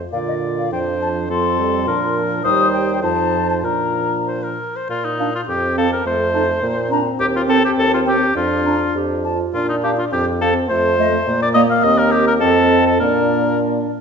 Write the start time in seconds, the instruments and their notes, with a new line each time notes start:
0.12 bassoon A#2, french horn D3, clarinet F4, oboe D5, flute F5
0.28 flute D#5
0.58 flute F5
0.71 bassoon F2, french horn F3, clarinet D4, oboe C5, flute G5
1.02 flute A5
1.30 french horn F3, clarinet C4, oboe A4, flute C6
1.59 french horn G3
1.87 bassoon A#2, french horn F3, clarinet D4, oboe A#4
2.44 bassoon D#2, french horn G3, clarinet D#4, oboe C5, flute D#6
2.73 flute G5
3.02 bassoon F2, french horn F3, clarinet D#4, oboe C5, flute A5
3.50 flute A5
3.64 bassoon A#2, french horn F3, clarinet D4, oboe A#4, flute A#5
4.28 oboe C5
4.43 oboe A#4
4.76 oboe C5
4.90 bassoon A#2, oboe F4
5.05 oboe D#4
5.20 clarinet D4, flute F5
5.35 oboe F4
5.48 bassoon F2, french horn C4, oboe G4
5.77 clarinet C4, oboe A4, flute F5
5.93 oboe A#4
6.05 bassoon F2, french horn A3, oboe C5
6.34 clarinet D#4, flute A5
6.62 bassoon A#2, french horn A#3
6.90 french horn C4, clarinet D4, flute A#5
7.19 bassoon D#2, oboe G4
7.36 oboe F4
7.48 clarinet C4, oboe A4, flute G5
7.65 oboe G4
7.77 bassoon D#2, oboe A4
7.94 oboe F4
8.06 clarinet C4, oboe G4, flute G5
8.35 bassoon F2, french horn D4, oboe F4
8.66 clarinet D4, flute A#5
8.95 bassoon F2, clarinet G4
9.24 clarinet F4, flute A5
9.54 bassoon A#2, french horn D4, oboe F4
9.69 oboe D#4
9.84 clarinet D4, oboe G4, flute F5
9.99 oboe F4
10.12 bassoon F2, french horn C4, oboe G4
10.41 clarinet C4, oboe A4, flute F5
10.69 bassoon F2, french horn A3, oboe C5
10.98 clarinet A3, french horn A3, flute D#5
11.27 bassoon A#2, french horn A#3
11.42 oboe D5
11.54 clarinet A#3, flute D5, oboe D#5
11.70 oboe F5
11.83 bassoon D#2, clarinet C4, flute D#5, oboe D#5
11.98 oboe A#4
12.12 oboe G4
12.27 oboe A#4
12.40 bassoon F2, clarinet C4, french horn C4, oboe A4, flute D#5
12.87 oboe A4
13.00 bassoon A#2, clarinet A#3, french horn D4, oboe A#4, flute D5